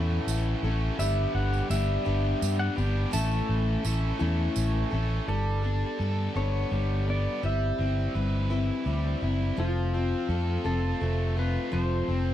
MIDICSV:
0, 0, Header, 1, 7, 480
1, 0, Start_track
1, 0, Tempo, 715990
1, 664, Time_signature, 6, 3, 24, 8
1, 8272, End_track
2, 0, Start_track
2, 0, Title_t, "Accordion"
2, 0, Program_c, 0, 21
2, 0, Note_on_c, 0, 69, 75
2, 0, Note_on_c, 0, 78, 75
2, 0, Note_on_c, 0, 85, 84
2, 634, Note_off_c, 0, 69, 0
2, 634, Note_off_c, 0, 85, 0
2, 649, Note_off_c, 0, 78, 0
2, 652, Note_on_c, 0, 83, 82
2, 654, Note_on_c, 0, 67, 74
2, 657, Note_on_c, 0, 74, 68
2, 2083, Note_off_c, 0, 83, 0
2, 2084, Note_off_c, 0, 67, 0
2, 2085, Note_off_c, 0, 74, 0
2, 2095, Note_on_c, 0, 76, 71
2, 2096, Note_on_c, 0, 69, 80
2, 2099, Note_on_c, 0, 85, 88
2, 3525, Note_off_c, 0, 69, 0
2, 3525, Note_off_c, 0, 76, 0
2, 3527, Note_off_c, 0, 85, 0
2, 8272, End_track
3, 0, Start_track
3, 0, Title_t, "Pedal steel guitar"
3, 0, Program_c, 1, 26
3, 0, Note_on_c, 1, 71, 79
3, 166, Note_off_c, 1, 71, 0
3, 665, Note_on_c, 1, 76, 81
3, 903, Note_on_c, 1, 78, 82
3, 911, Note_off_c, 1, 76, 0
3, 1141, Note_off_c, 1, 78, 0
3, 1144, Note_on_c, 1, 76, 89
3, 1737, Note_off_c, 1, 76, 0
3, 1739, Note_on_c, 1, 78, 89
3, 1862, Note_off_c, 1, 78, 0
3, 1865, Note_on_c, 1, 79, 78
3, 2101, Note_on_c, 1, 81, 106
3, 2111, Note_off_c, 1, 79, 0
3, 3275, Note_off_c, 1, 81, 0
3, 3543, Note_on_c, 1, 69, 73
3, 4237, Note_off_c, 1, 69, 0
3, 4267, Note_on_c, 1, 73, 82
3, 4757, Note_off_c, 1, 73, 0
3, 4759, Note_on_c, 1, 74, 75
3, 4995, Note_off_c, 1, 74, 0
3, 4997, Note_on_c, 1, 76, 83
3, 6165, Note_off_c, 1, 76, 0
3, 6434, Note_on_c, 1, 65, 73
3, 7144, Note_on_c, 1, 69, 79
3, 7171, Note_off_c, 1, 65, 0
3, 7634, Note_off_c, 1, 69, 0
3, 7636, Note_on_c, 1, 71, 81
3, 7854, Note_off_c, 1, 71, 0
3, 7863, Note_on_c, 1, 72, 97
3, 8272, Note_off_c, 1, 72, 0
3, 8272, End_track
4, 0, Start_track
4, 0, Title_t, "Steel-string acoustic guitar"
4, 0, Program_c, 2, 25
4, 0, Note_on_c, 2, 45, 66
4, 0, Note_on_c, 2, 57, 78
4, 0, Note_on_c, 2, 61, 71
4, 0, Note_on_c, 2, 64, 79
4, 0, Note_on_c, 2, 69, 83
4, 420, Note_off_c, 2, 69, 0
4, 426, Note_off_c, 2, 64, 0
4, 427, Note_off_c, 2, 61, 0
4, 428, Note_on_c, 2, 69, 58
4, 429, Note_off_c, 2, 45, 0
4, 429, Note_off_c, 2, 57, 0
4, 434, Note_on_c, 2, 64, 51
4, 439, Note_on_c, 2, 61, 48
4, 662, Note_off_c, 2, 61, 0
4, 662, Note_on_c, 2, 55, 77
4, 665, Note_on_c, 2, 62, 82
4, 666, Note_off_c, 2, 64, 0
4, 666, Note_off_c, 2, 69, 0
4, 668, Note_on_c, 2, 59, 79
4, 673, Note_on_c, 2, 71, 88
4, 1127, Note_off_c, 2, 55, 0
4, 1135, Note_on_c, 2, 55, 69
4, 1136, Note_off_c, 2, 62, 0
4, 1140, Note_off_c, 2, 59, 0
4, 1144, Note_off_c, 2, 71, 0
4, 1144, Note_on_c, 2, 62, 60
4, 1148, Note_on_c, 2, 59, 72
4, 1152, Note_on_c, 2, 71, 66
4, 1365, Note_off_c, 2, 71, 0
4, 1372, Note_off_c, 2, 59, 0
4, 1372, Note_off_c, 2, 62, 0
4, 1373, Note_on_c, 2, 71, 78
4, 1375, Note_off_c, 2, 55, 0
4, 1380, Note_on_c, 2, 59, 77
4, 1380, Note_on_c, 2, 62, 65
4, 1383, Note_on_c, 2, 55, 65
4, 1840, Note_off_c, 2, 71, 0
4, 1848, Note_on_c, 2, 71, 56
4, 1853, Note_off_c, 2, 59, 0
4, 1861, Note_off_c, 2, 62, 0
4, 1861, Note_on_c, 2, 59, 47
4, 1863, Note_off_c, 2, 55, 0
4, 1871, Note_on_c, 2, 62, 42
4, 2085, Note_on_c, 2, 45, 88
4, 2090, Note_on_c, 2, 57, 82
4, 2091, Note_off_c, 2, 62, 0
4, 2093, Note_off_c, 2, 71, 0
4, 2093, Note_on_c, 2, 61, 83
4, 2095, Note_off_c, 2, 59, 0
4, 2096, Note_on_c, 2, 69, 88
4, 2097, Note_on_c, 2, 64, 84
4, 2563, Note_off_c, 2, 57, 0
4, 2571, Note_off_c, 2, 61, 0
4, 2571, Note_on_c, 2, 57, 59
4, 2574, Note_off_c, 2, 45, 0
4, 2578, Note_off_c, 2, 64, 0
4, 2579, Note_off_c, 2, 69, 0
4, 2579, Note_on_c, 2, 61, 62
4, 2586, Note_on_c, 2, 64, 68
4, 2592, Note_on_c, 2, 69, 68
4, 2803, Note_off_c, 2, 64, 0
4, 2803, Note_off_c, 2, 69, 0
4, 2810, Note_off_c, 2, 57, 0
4, 2810, Note_off_c, 2, 61, 0
4, 2811, Note_on_c, 2, 64, 78
4, 2811, Note_on_c, 2, 69, 84
4, 2818, Note_on_c, 2, 57, 74
4, 2818, Note_on_c, 2, 61, 75
4, 2822, Note_on_c, 2, 45, 70
4, 3281, Note_off_c, 2, 69, 0
4, 3289, Note_on_c, 2, 69, 58
4, 3291, Note_off_c, 2, 64, 0
4, 3299, Note_off_c, 2, 61, 0
4, 3299, Note_on_c, 2, 64, 51
4, 3301, Note_off_c, 2, 57, 0
4, 3302, Note_off_c, 2, 45, 0
4, 3307, Note_on_c, 2, 61, 50
4, 3536, Note_off_c, 2, 69, 0
4, 3541, Note_off_c, 2, 64, 0
4, 3541, Note_on_c, 2, 55, 66
4, 3542, Note_off_c, 2, 61, 0
4, 3544, Note_on_c, 2, 62, 70
4, 3546, Note_on_c, 2, 59, 68
4, 3550, Note_on_c, 2, 69, 74
4, 3763, Note_off_c, 2, 69, 0
4, 3771, Note_on_c, 2, 69, 55
4, 3774, Note_off_c, 2, 59, 0
4, 3779, Note_off_c, 2, 62, 0
4, 3782, Note_off_c, 2, 55, 0
4, 3782, Note_on_c, 2, 59, 45
4, 3787, Note_on_c, 2, 62, 42
4, 4016, Note_on_c, 2, 55, 49
4, 4017, Note_off_c, 2, 69, 0
4, 4018, Note_off_c, 2, 62, 0
4, 4023, Note_off_c, 2, 59, 0
4, 4026, Note_on_c, 2, 62, 60
4, 4030, Note_on_c, 2, 59, 55
4, 4036, Note_on_c, 2, 69, 66
4, 4253, Note_off_c, 2, 69, 0
4, 4257, Note_off_c, 2, 59, 0
4, 4259, Note_off_c, 2, 62, 0
4, 4260, Note_off_c, 2, 55, 0
4, 4261, Note_on_c, 2, 69, 68
4, 4265, Note_on_c, 2, 59, 65
4, 4267, Note_on_c, 2, 62, 59
4, 4270, Note_on_c, 2, 55, 55
4, 4490, Note_off_c, 2, 55, 0
4, 4498, Note_off_c, 2, 62, 0
4, 4499, Note_off_c, 2, 59, 0
4, 4499, Note_on_c, 2, 55, 53
4, 4503, Note_off_c, 2, 69, 0
4, 4506, Note_on_c, 2, 62, 58
4, 4507, Note_on_c, 2, 59, 55
4, 4516, Note_on_c, 2, 69, 60
4, 4726, Note_off_c, 2, 69, 0
4, 4734, Note_on_c, 2, 69, 45
4, 4739, Note_off_c, 2, 59, 0
4, 4741, Note_off_c, 2, 55, 0
4, 4745, Note_off_c, 2, 62, 0
4, 4747, Note_on_c, 2, 59, 47
4, 4755, Note_on_c, 2, 62, 41
4, 4979, Note_off_c, 2, 69, 0
4, 4979, Note_on_c, 2, 55, 67
4, 4981, Note_off_c, 2, 62, 0
4, 4983, Note_off_c, 2, 59, 0
4, 4984, Note_on_c, 2, 60, 77
4, 4986, Note_on_c, 2, 64, 85
4, 4989, Note_on_c, 2, 71, 75
4, 5211, Note_off_c, 2, 71, 0
4, 5219, Note_on_c, 2, 71, 47
4, 5222, Note_off_c, 2, 55, 0
4, 5223, Note_off_c, 2, 64, 0
4, 5224, Note_off_c, 2, 60, 0
4, 5231, Note_on_c, 2, 64, 45
4, 5239, Note_on_c, 2, 60, 41
4, 5458, Note_off_c, 2, 60, 0
4, 5461, Note_off_c, 2, 64, 0
4, 5461, Note_on_c, 2, 55, 51
4, 5462, Note_off_c, 2, 71, 0
4, 5466, Note_on_c, 2, 60, 54
4, 5469, Note_on_c, 2, 64, 59
4, 5473, Note_on_c, 2, 71, 64
4, 5691, Note_off_c, 2, 71, 0
4, 5693, Note_off_c, 2, 64, 0
4, 5699, Note_on_c, 2, 71, 76
4, 5701, Note_off_c, 2, 60, 0
4, 5701, Note_on_c, 2, 64, 69
4, 5703, Note_off_c, 2, 55, 0
4, 5709, Note_on_c, 2, 60, 67
4, 5712, Note_on_c, 2, 55, 53
4, 5926, Note_off_c, 2, 55, 0
4, 5930, Note_off_c, 2, 60, 0
4, 5934, Note_on_c, 2, 55, 59
4, 5938, Note_off_c, 2, 64, 0
4, 5938, Note_on_c, 2, 60, 66
4, 5942, Note_off_c, 2, 71, 0
4, 5946, Note_on_c, 2, 64, 73
4, 5950, Note_on_c, 2, 71, 68
4, 6166, Note_off_c, 2, 71, 0
4, 6174, Note_on_c, 2, 71, 54
4, 6178, Note_off_c, 2, 64, 0
4, 6180, Note_off_c, 2, 55, 0
4, 6182, Note_off_c, 2, 60, 0
4, 6186, Note_on_c, 2, 64, 48
4, 6191, Note_on_c, 2, 60, 49
4, 6410, Note_off_c, 2, 60, 0
4, 6413, Note_on_c, 2, 53, 77
4, 6418, Note_on_c, 2, 57, 78
4, 6418, Note_on_c, 2, 60, 77
4, 6419, Note_off_c, 2, 64, 0
4, 6420, Note_off_c, 2, 71, 0
4, 6422, Note_on_c, 2, 65, 78
4, 6425, Note_on_c, 2, 69, 73
4, 6656, Note_off_c, 2, 69, 0
4, 6659, Note_off_c, 2, 53, 0
4, 6661, Note_off_c, 2, 65, 0
4, 6662, Note_off_c, 2, 57, 0
4, 6662, Note_off_c, 2, 60, 0
4, 6664, Note_on_c, 2, 69, 55
4, 6669, Note_on_c, 2, 65, 49
4, 6682, Note_on_c, 2, 60, 39
4, 6896, Note_off_c, 2, 60, 0
4, 6898, Note_off_c, 2, 65, 0
4, 6900, Note_on_c, 2, 57, 54
4, 6904, Note_on_c, 2, 60, 52
4, 6905, Note_off_c, 2, 69, 0
4, 6907, Note_on_c, 2, 65, 55
4, 6914, Note_on_c, 2, 69, 61
4, 7126, Note_off_c, 2, 69, 0
4, 7130, Note_off_c, 2, 65, 0
4, 7133, Note_off_c, 2, 60, 0
4, 7134, Note_on_c, 2, 69, 67
4, 7135, Note_off_c, 2, 57, 0
4, 7138, Note_on_c, 2, 65, 61
4, 7141, Note_on_c, 2, 60, 64
4, 7143, Note_on_c, 2, 57, 63
4, 7148, Note_on_c, 2, 53, 53
4, 7371, Note_off_c, 2, 57, 0
4, 7375, Note_off_c, 2, 60, 0
4, 7379, Note_on_c, 2, 57, 61
4, 7380, Note_off_c, 2, 69, 0
4, 7381, Note_off_c, 2, 65, 0
4, 7383, Note_on_c, 2, 60, 64
4, 7386, Note_off_c, 2, 53, 0
4, 7390, Note_on_c, 2, 65, 64
4, 7397, Note_on_c, 2, 69, 63
4, 7609, Note_off_c, 2, 69, 0
4, 7617, Note_on_c, 2, 69, 49
4, 7619, Note_off_c, 2, 65, 0
4, 7622, Note_off_c, 2, 57, 0
4, 7624, Note_off_c, 2, 60, 0
4, 7627, Note_on_c, 2, 65, 47
4, 7631, Note_on_c, 2, 60, 40
4, 7853, Note_off_c, 2, 65, 0
4, 7854, Note_off_c, 2, 60, 0
4, 7855, Note_on_c, 2, 53, 79
4, 7855, Note_on_c, 2, 57, 73
4, 7859, Note_off_c, 2, 69, 0
4, 7861, Note_on_c, 2, 65, 68
4, 7863, Note_on_c, 2, 60, 69
4, 7867, Note_on_c, 2, 69, 78
4, 8089, Note_off_c, 2, 69, 0
4, 8097, Note_on_c, 2, 69, 54
4, 8099, Note_off_c, 2, 53, 0
4, 8099, Note_off_c, 2, 65, 0
4, 8100, Note_off_c, 2, 57, 0
4, 8103, Note_off_c, 2, 60, 0
4, 8107, Note_on_c, 2, 65, 43
4, 8116, Note_on_c, 2, 60, 38
4, 8272, Note_off_c, 2, 60, 0
4, 8272, Note_off_c, 2, 65, 0
4, 8272, Note_off_c, 2, 69, 0
4, 8272, End_track
5, 0, Start_track
5, 0, Title_t, "Overdriven electric guitar"
5, 0, Program_c, 3, 29
5, 0, Note_on_c, 3, 52, 79
5, 438, Note_on_c, 3, 57, 60
5, 652, Note_off_c, 3, 52, 0
5, 656, Note_off_c, 3, 57, 0
5, 657, Note_on_c, 3, 43, 84
5, 662, Note_on_c, 3, 50, 86
5, 676, Note_on_c, 3, 67, 98
5, 1149, Note_off_c, 3, 67, 0
5, 1157, Note_on_c, 3, 67, 76
5, 1369, Note_off_c, 3, 67, 0
5, 1377, Note_on_c, 3, 67, 88
5, 1380, Note_off_c, 3, 43, 0
5, 1382, Note_off_c, 3, 50, 0
5, 1392, Note_on_c, 3, 50, 77
5, 1395, Note_on_c, 3, 43, 67
5, 1846, Note_off_c, 3, 67, 0
5, 1854, Note_on_c, 3, 67, 67
5, 1872, Note_on_c, 3, 55, 64
5, 2084, Note_off_c, 3, 67, 0
5, 2092, Note_off_c, 3, 50, 0
5, 2093, Note_off_c, 3, 55, 0
5, 2094, Note_off_c, 3, 43, 0
5, 2098, Note_on_c, 3, 52, 98
5, 2566, Note_off_c, 3, 52, 0
5, 2574, Note_on_c, 3, 52, 71
5, 2824, Note_off_c, 3, 52, 0
5, 2832, Note_on_c, 3, 52, 73
5, 3311, Note_on_c, 3, 57, 60
5, 3533, Note_off_c, 3, 52, 0
5, 3533, Note_off_c, 3, 57, 0
5, 8272, End_track
6, 0, Start_track
6, 0, Title_t, "Fingered electric bass"
6, 0, Program_c, 4, 33
6, 0, Note_on_c, 4, 40, 89
6, 118, Note_off_c, 4, 40, 0
6, 182, Note_on_c, 4, 33, 84
6, 357, Note_off_c, 4, 33, 0
6, 421, Note_on_c, 4, 33, 94
6, 596, Note_off_c, 4, 33, 0
6, 662, Note_on_c, 4, 31, 81
6, 836, Note_off_c, 4, 31, 0
6, 901, Note_on_c, 4, 31, 85
6, 1076, Note_off_c, 4, 31, 0
6, 1140, Note_on_c, 4, 31, 94
6, 1315, Note_off_c, 4, 31, 0
6, 1384, Note_on_c, 4, 31, 82
6, 1558, Note_off_c, 4, 31, 0
6, 1623, Note_on_c, 4, 43, 90
6, 1797, Note_off_c, 4, 43, 0
6, 1861, Note_on_c, 4, 31, 90
6, 2036, Note_off_c, 4, 31, 0
6, 2104, Note_on_c, 4, 33, 85
6, 2278, Note_off_c, 4, 33, 0
6, 2341, Note_on_c, 4, 33, 86
6, 2516, Note_off_c, 4, 33, 0
6, 2580, Note_on_c, 4, 33, 82
6, 2755, Note_off_c, 4, 33, 0
6, 2822, Note_on_c, 4, 40, 88
6, 2997, Note_off_c, 4, 40, 0
6, 3061, Note_on_c, 4, 33, 88
6, 3236, Note_off_c, 4, 33, 0
6, 3302, Note_on_c, 4, 33, 93
6, 3477, Note_off_c, 4, 33, 0
6, 3538, Note_on_c, 4, 31, 71
6, 3906, Note_off_c, 4, 31, 0
6, 4021, Note_on_c, 4, 43, 76
6, 4205, Note_off_c, 4, 43, 0
6, 4260, Note_on_c, 4, 31, 76
6, 4445, Note_off_c, 4, 31, 0
6, 4503, Note_on_c, 4, 31, 79
6, 4870, Note_off_c, 4, 31, 0
6, 4984, Note_on_c, 4, 31, 78
6, 5167, Note_off_c, 4, 31, 0
6, 5223, Note_on_c, 4, 31, 75
6, 5407, Note_off_c, 4, 31, 0
6, 5463, Note_on_c, 4, 31, 84
6, 5830, Note_off_c, 4, 31, 0
6, 5939, Note_on_c, 4, 38, 75
6, 6124, Note_off_c, 4, 38, 0
6, 6182, Note_on_c, 4, 30, 77
6, 6366, Note_off_c, 4, 30, 0
6, 6421, Note_on_c, 4, 29, 82
6, 6789, Note_off_c, 4, 29, 0
6, 6897, Note_on_c, 4, 41, 88
6, 7083, Note_off_c, 4, 41, 0
6, 7138, Note_on_c, 4, 29, 75
6, 7324, Note_off_c, 4, 29, 0
6, 7384, Note_on_c, 4, 29, 78
6, 7750, Note_off_c, 4, 29, 0
6, 7863, Note_on_c, 4, 29, 79
6, 8047, Note_off_c, 4, 29, 0
6, 8101, Note_on_c, 4, 29, 80
6, 8272, Note_off_c, 4, 29, 0
6, 8272, End_track
7, 0, Start_track
7, 0, Title_t, "Drums"
7, 187, Note_on_c, 9, 54, 95
7, 254, Note_off_c, 9, 54, 0
7, 668, Note_on_c, 9, 54, 91
7, 735, Note_off_c, 9, 54, 0
7, 1028, Note_on_c, 9, 54, 30
7, 1095, Note_off_c, 9, 54, 0
7, 1144, Note_on_c, 9, 54, 99
7, 1211, Note_off_c, 9, 54, 0
7, 1625, Note_on_c, 9, 54, 85
7, 1692, Note_off_c, 9, 54, 0
7, 1864, Note_on_c, 9, 54, 30
7, 1931, Note_off_c, 9, 54, 0
7, 2098, Note_on_c, 9, 54, 96
7, 2165, Note_off_c, 9, 54, 0
7, 2222, Note_on_c, 9, 54, 31
7, 2289, Note_off_c, 9, 54, 0
7, 2578, Note_on_c, 9, 54, 95
7, 2645, Note_off_c, 9, 54, 0
7, 3055, Note_on_c, 9, 54, 87
7, 3122, Note_off_c, 9, 54, 0
7, 8272, End_track
0, 0, End_of_file